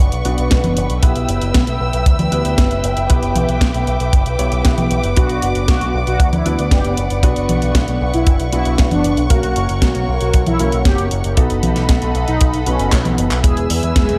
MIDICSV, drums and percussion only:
0, 0, Header, 1, 2, 480
1, 0, Start_track
1, 0, Key_signature, 2, "minor"
1, 0, Tempo, 517241
1, 953, Time_signature, 4, 2, 24, 8
1, 13163, End_track
2, 0, Start_track
2, 0, Title_t, "Drums"
2, 112, Note_on_c, 9, 42, 43
2, 205, Note_off_c, 9, 42, 0
2, 232, Note_on_c, 9, 42, 65
2, 325, Note_off_c, 9, 42, 0
2, 352, Note_on_c, 9, 42, 40
2, 445, Note_off_c, 9, 42, 0
2, 472, Note_on_c, 9, 38, 125
2, 472, Note_on_c, 9, 42, 92
2, 481, Note_on_c, 9, 36, 117
2, 565, Note_off_c, 9, 38, 0
2, 565, Note_off_c, 9, 42, 0
2, 574, Note_off_c, 9, 36, 0
2, 592, Note_on_c, 9, 42, 41
2, 592, Note_on_c, 9, 63, 75
2, 685, Note_off_c, 9, 42, 0
2, 685, Note_off_c, 9, 63, 0
2, 712, Note_on_c, 9, 42, 66
2, 805, Note_off_c, 9, 42, 0
2, 833, Note_on_c, 9, 42, 41
2, 925, Note_off_c, 9, 42, 0
2, 952, Note_on_c, 9, 42, 95
2, 955, Note_on_c, 9, 36, 121
2, 1045, Note_off_c, 9, 42, 0
2, 1048, Note_off_c, 9, 36, 0
2, 1072, Note_on_c, 9, 42, 40
2, 1165, Note_off_c, 9, 42, 0
2, 1193, Note_on_c, 9, 42, 67
2, 1286, Note_off_c, 9, 42, 0
2, 1313, Note_on_c, 9, 42, 41
2, 1406, Note_off_c, 9, 42, 0
2, 1433, Note_on_c, 9, 38, 124
2, 1433, Note_on_c, 9, 42, 91
2, 1439, Note_on_c, 9, 36, 111
2, 1526, Note_off_c, 9, 38, 0
2, 1526, Note_off_c, 9, 42, 0
2, 1532, Note_off_c, 9, 36, 0
2, 1552, Note_on_c, 9, 42, 41
2, 1645, Note_off_c, 9, 42, 0
2, 1794, Note_on_c, 9, 42, 39
2, 1886, Note_off_c, 9, 42, 0
2, 1913, Note_on_c, 9, 36, 126
2, 1913, Note_on_c, 9, 42, 96
2, 2006, Note_off_c, 9, 36, 0
2, 2006, Note_off_c, 9, 42, 0
2, 2033, Note_on_c, 9, 42, 39
2, 2033, Note_on_c, 9, 63, 75
2, 2126, Note_off_c, 9, 42, 0
2, 2126, Note_off_c, 9, 63, 0
2, 2153, Note_on_c, 9, 42, 65
2, 2246, Note_off_c, 9, 42, 0
2, 2273, Note_on_c, 9, 42, 41
2, 2365, Note_off_c, 9, 42, 0
2, 2393, Note_on_c, 9, 38, 125
2, 2393, Note_on_c, 9, 42, 98
2, 2396, Note_on_c, 9, 36, 112
2, 2486, Note_off_c, 9, 38, 0
2, 2486, Note_off_c, 9, 42, 0
2, 2489, Note_off_c, 9, 36, 0
2, 2513, Note_on_c, 9, 42, 39
2, 2606, Note_off_c, 9, 42, 0
2, 2633, Note_on_c, 9, 42, 68
2, 2726, Note_off_c, 9, 42, 0
2, 2753, Note_on_c, 9, 42, 42
2, 2846, Note_off_c, 9, 42, 0
2, 2873, Note_on_c, 9, 42, 88
2, 2881, Note_on_c, 9, 36, 120
2, 2966, Note_off_c, 9, 42, 0
2, 2973, Note_off_c, 9, 36, 0
2, 2994, Note_on_c, 9, 42, 40
2, 3086, Note_off_c, 9, 42, 0
2, 3114, Note_on_c, 9, 42, 67
2, 3114, Note_on_c, 9, 63, 64
2, 3207, Note_off_c, 9, 42, 0
2, 3207, Note_off_c, 9, 63, 0
2, 3235, Note_on_c, 9, 42, 38
2, 3328, Note_off_c, 9, 42, 0
2, 3350, Note_on_c, 9, 36, 113
2, 3354, Note_on_c, 9, 38, 120
2, 3354, Note_on_c, 9, 42, 90
2, 3443, Note_off_c, 9, 36, 0
2, 3447, Note_off_c, 9, 38, 0
2, 3447, Note_off_c, 9, 42, 0
2, 3474, Note_on_c, 9, 42, 39
2, 3567, Note_off_c, 9, 42, 0
2, 3594, Note_on_c, 9, 42, 36
2, 3686, Note_off_c, 9, 42, 0
2, 3713, Note_on_c, 9, 42, 37
2, 3806, Note_off_c, 9, 42, 0
2, 3833, Note_on_c, 9, 36, 110
2, 3833, Note_on_c, 9, 42, 92
2, 3926, Note_off_c, 9, 36, 0
2, 3926, Note_off_c, 9, 42, 0
2, 3953, Note_on_c, 9, 42, 40
2, 4046, Note_off_c, 9, 42, 0
2, 4074, Note_on_c, 9, 42, 61
2, 4167, Note_off_c, 9, 42, 0
2, 4193, Note_on_c, 9, 42, 38
2, 4286, Note_off_c, 9, 42, 0
2, 4312, Note_on_c, 9, 38, 127
2, 4312, Note_on_c, 9, 42, 95
2, 4320, Note_on_c, 9, 36, 115
2, 4405, Note_off_c, 9, 38, 0
2, 4405, Note_off_c, 9, 42, 0
2, 4412, Note_off_c, 9, 36, 0
2, 4434, Note_on_c, 9, 42, 39
2, 4434, Note_on_c, 9, 63, 84
2, 4526, Note_off_c, 9, 42, 0
2, 4526, Note_off_c, 9, 63, 0
2, 4554, Note_on_c, 9, 42, 64
2, 4646, Note_off_c, 9, 42, 0
2, 4673, Note_on_c, 9, 42, 39
2, 4766, Note_off_c, 9, 42, 0
2, 4793, Note_on_c, 9, 42, 90
2, 4801, Note_on_c, 9, 36, 127
2, 4886, Note_off_c, 9, 42, 0
2, 4893, Note_off_c, 9, 36, 0
2, 4913, Note_on_c, 9, 42, 38
2, 5006, Note_off_c, 9, 42, 0
2, 5033, Note_on_c, 9, 42, 65
2, 5126, Note_off_c, 9, 42, 0
2, 5152, Note_on_c, 9, 42, 37
2, 5245, Note_off_c, 9, 42, 0
2, 5273, Note_on_c, 9, 38, 117
2, 5273, Note_on_c, 9, 42, 85
2, 5276, Note_on_c, 9, 36, 127
2, 5366, Note_off_c, 9, 38, 0
2, 5366, Note_off_c, 9, 42, 0
2, 5369, Note_off_c, 9, 36, 0
2, 5394, Note_on_c, 9, 42, 39
2, 5487, Note_off_c, 9, 42, 0
2, 5634, Note_on_c, 9, 42, 37
2, 5727, Note_off_c, 9, 42, 0
2, 5751, Note_on_c, 9, 36, 116
2, 5752, Note_on_c, 9, 42, 87
2, 5844, Note_off_c, 9, 36, 0
2, 5845, Note_off_c, 9, 42, 0
2, 5873, Note_on_c, 9, 42, 38
2, 5873, Note_on_c, 9, 63, 84
2, 5966, Note_off_c, 9, 42, 0
2, 5966, Note_off_c, 9, 63, 0
2, 5993, Note_on_c, 9, 42, 61
2, 6085, Note_off_c, 9, 42, 0
2, 6113, Note_on_c, 9, 42, 37
2, 6205, Note_off_c, 9, 42, 0
2, 6230, Note_on_c, 9, 36, 120
2, 6232, Note_on_c, 9, 38, 117
2, 6232, Note_on_c, 9, 42, 87
2, 6323, Note_off_c, 9, 36, 0
2, 6325, Note_off_c, 9, 38, 0
2, 6325, Note_off_c, 9, 42, 0
2, 6352, Note_on_c, 9, 42, 37
2, 6445, Note_off_c, 9, 42, 0
2, 6472, Note_on_c, 9, 42, 65
2, 6564, Note_off_c, 9, 42, 0
2, 6592, Note_on_c, 9, 42, 37
2, 6685, Note_off_c, 9, 42, 0
2, 6709, Note_on_c, 9, 36, 107
2, 6712, Note_on_c, 9, 42, 90
2, 6802, Note_off_c, 9, 36, 0
2, 6804, Note_off_c, 9, 42, 0
2, 6832, Note_on_c, 9, 42, 37
2, 6925, Note_off_c, 9, 42, 0
2, 6951, Note_on_c, 9, 42, 64
2, 6951, Note_on_c, 9, 63, 65
2, 7043, Note_off_c, 9, 42, 0
2, 7043, Note_off_c, 9, 63, 0
2, 7071, Note_on_c, 9, 42, 38
2, 7164, Note_off_c, 9, 42, 0
2, 7190, Note_on_c, 9, 36, 101
2, 7191, Note_on_c, 9, 38, 112
2, 7191, Note_on_c, 9, 42, 84
2, 7282, Note_off_c, 9, 36, 0
2, 7284, Note_off_c, 9, 38, 0
2, 7284, Note_off_c, 9, 42, 0
2, 7311, Note_on_c, 9, 42, 37
2, 7404, Note_off_c, 9, 42, 0
2, 7550, Note_on_c, 9, 42, 35
2, 7643, Note_off_c, 9, 42, 0
2, 7671, Note_on_c, 9, 42, 91
2, 7672, Note_on_c, 9, 36, 125
2, 7764, Note_off_c, 9, 42, 0
2, 7765, Note_off_c, 9, 36, 0
2, 7791, Note_on_c, 9, 42, 39
2, 7884, Note_off_c, 9, 42, 0
2, 7911, Note_on_c, 9, 42, 61
2, 8004, Note_off_c, 9, 42, 0
2, 8031, Note_on_c, 9, 42, 37
2, 8124, Note_off_c, 9, 42, 0
2, 8151, Note_on_c, 9, 38, 118
2, 8151, Note_on_c, 9, 42, 88
2, 8160, Note_on_c, 9, 36, 116
2, 8244, Note_off_c, 9, 38, 0
2, 8244, Note_off_c, 9, 42, 0
2, 8253, Note_off_c, 9, 36, 0
2, 8271, Note_on_c, 9, 42, 39
2, 8271, Note_on_c, 9, 63, 83
2, 8364, Note_off_c, 9, 42, 0
2, 8364, Note_off_c, 9, 63, 0
2, 8393, Note_on_c, 9, 42, 64
2, 8485, Note_off_c, 9, 42, 0
2, 8512, Note_on_c, 9, 42, 37
2, 8605, Note_off_c, 9, 42, 0
2, 8632, Note_on_c, 9, 42, 95
2, 8634, Note_on_c, 9, 36, 112
2, 8724, Note_off_c, 9, 42, 0
2, 8727, Note_off_c, 9, 36, 0
2, 8753, Note_on_c, 9, 42, 39
2, 8846, Note_off_c, 9, 42, 0
2, 8872, Note_on_c, 9, 42, 65
2, 8965, Note_off_c, 9, 42, 0
2, 8992, Note_on_c, 9, 42, 37
2, 9085, Note_off_c, 9, 42, 0
2, 9111, Note_on_c, 9, 38, 114
2, 9111, Note_on_c, 9, 42, 89
2, 9112, Note_on_c, 9, 36, 101
2, 9204, Note_off_c, 9, 36, 0
2, 9204, Note_off_c, 9, 38, 0
2, 9204, Note_off_c, 9, 42, 0
2, 9232, Note_on_c, 9, 42, 39
2, 9325, Note_off_c, 9, 42, 0
2, 9471, Note_on_c, 9, 42, 36
2, 9564, Note_off_c, 9, 42, 0
2, 9592, Note_on_c, 9, 42, 89
2, 9596, Note_on_c, 9, 36, 114
2, 9684, Note_off_c, 9, 42, 0
2, 9689, Note_off_c, 9, 36, 0
2, 9712, Note_on_c, 9, 42, 40
2, 9712, Note_on_c, 9, 63, 78
2, 9804, Note_off_c, 9, 42, 0
2, 9804, Note_off_c, 9, 63, 0
2, 9832, Note_on_c, 9, 42, 64
2, 9925, Note_off_c, 9, 42, 0
2, 9951, Note_on_c, 9, 42, 38
2, 10044, Note_off_c, 9, 42, 0
2, 10071, Note_on_c, 9, 38, 113
2, 10071, Note_on_c, 9, 42, 89
2, 10072, Note_on_c, 9, 36, 101
2, 10164, Note_off_c, 9, 38, 0
2, 10164, Note_off_c, 9, 42, 0
2, 10165, Note_off_c, 9, 36, 0
2, 10192, Note_on_c, 9, 42, 39
2, 10285, Note_off_c, 9, 42, 0
2, 10312, Note_on_c, 9, 42, 68
2, 10404, Note_off_c, 9, 42, 0
2, 10431, Note_on_c, 9, 42, 39
2, 10524, Note_off_c, 9, 42, 0
2, 10552, Note_on_c, 9, 42, 93
2, 10555, Note_on_c, 9, 36, 113
2, 10644, Note_off_c, 9, 42, 0
2, 10647, Note_off_c, 9, 36, 0
2, 10672, Note_on_c, 9, 42, 40
2, 10765, Note_off_c, 9, 42, 0
2, 10793, Note_on_c, 9, 42, 67
2, 10793, Note_on_c, 9, 63, 61
2, 10886, Note_off_c, 9, 42, 0
2, 10886, Note_off_c, 9, 63, 0
2, 10912, Note_on_c, 9, 38, 34
2, 10912, Note_on_c, 9, 42, 41
2, 11005, Note_off_c, 9, 38, 0
2, 11005, Note_off_c, 9, 42, 0
2, 11032, Note_on_c, 9, 38, 115
2, 11032, Note_on_c, 9, 42, 98
2, 11036, Note_on_c, 9, 36, 113
2, 11125, Note_off_c, 9, 38, 0
2, 11125, Note_off_c, 9, 42, 0
2, 11129, Note_off_c, 9, 36, 0
2, 11153, Note_on_c, 9, 42, 41
2, 11245, Note_off_c, 9, 42, 0
2, 11274, Note_on_c, 9, 42, 37
2, 11367, Note_off_c, 9, 42, 0
2, 11393, Note_on_c, 9, 42, 38
2, 11486, Note_off_c, 9, 42, 0
2, 11513, Note_on_c, 9, 42, 98
2, 11519, Note_on_c, 9, 36, 122
2, 11606, Note_off_c, 9, 42, 0
2, 11612, Note_off_c, 9, 36, 0
2, 11633, Note_on_c, 9, 42, 39
2, 11726, Note_off_c, 9, 42, 0
2, 11753, Note_on_c, 9, 42, 65
2, 11846, Note_off_c, 9, 42, 0
2, 11873, Note_on_c, 9, 42, 38
2, 11966, Note_off_c, 9, 42, 0
2, 11992, Note_on_c, 9, 38, 113
2, 11992, Note_on_c, 9, 39, 107
2, 11992, Note_on_c, 9, 42, 92
2, 11994, Note_on_c, 9, 36, 101
2, 12085, Note_off_c, 9, 38, 0
2, 12085, Note_off_c, 9, 39, 0
2, 12085, Note_off_c, 9, 42, 0
2, 12087, Note_off_c, 9, 36, 0
2, 12113, Note_on_c, 9, 42, 40
2, 12113, Note_on_c, 9, 63, 76
2, 12206, Note_off_c, 9, 42, 0
2, 12206, Note_off_c, 9, 63, 0
2, 12233, Note_on_c, 9, 42, 68
2, 12325, Note_off_c, 9, 42, 0
2, 12353, Note_on_c, 9, 39, 80
2, 12353, Note_on_c, 9, 42, 41
2, 12445, Note_off_c, 9, 39, 0
2, 12445, Note_off_c, 9, 42, 0
2, 12472, Note_on_c, 9, 36, 122
2, 12472, Note_on_c, 9, 42, 97
2, 12565, Note_off_c, 9, 36, 0
2, 12565, Note_off_c, 9, 42, 0
2, 12593, Note_on_c, 9, 42, 39
2, 12686, Note_off_c, 9, 42, 0
2, 12713, Note_on_c, 9, 46, 106
2, 12806, Note_off_c, 9, 46, 0
2, 12834, Note_on_c, 9, 42, 40
2, 12927, Note_off_c, 9, 42, 0
2, 12953, Note_on_c, 9, 38, 123
2, 12953, Note_on_c, 9, 42, 94
2, 12955, Note_on_c, 9, 36, 123
2, 13046, Note_off_c, 9, 38, 0
2, 13046, Note_off_c, 9, 42, 0
2, 13048, Note_off_c, 9, 36, 0
2, 13074, Note_on_c, 9, 42, 41
2, 13163, Note_off_c, 9, 42, 0
2, 13163, End_track
0, 0, End_of_file